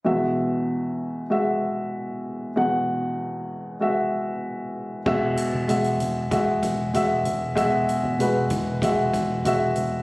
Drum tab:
CC |----------------|----------------|x---------------|----------------|
HH |----------------|----------------|--x-xxx-x-x-x-x-|x-x-x-x-x-x-x-x-|
BD |----------------|----------------|o-------o-o-----|o-----o-o-o-----|